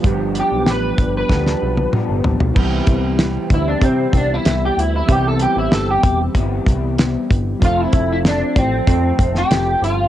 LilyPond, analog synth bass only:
\new Staff \with { instrumentName = "Analog synth bass" } { \clef bass \time 4/4 \key c \major \tempo 4 = 95 g,,8. b,,16 a,,8 g,,8 d,8 b,,8 r16 g,,16 a,,16 b,,16 | c,8 c,4 d,8 c8 c,8 c,8 d,8 | c,8. a,,16 g,,8 e,,8 g,,8 c,4 g,,8 | f,,8 f,,4 a,,8 f,8 f,,8 f,,8 g,,8 | }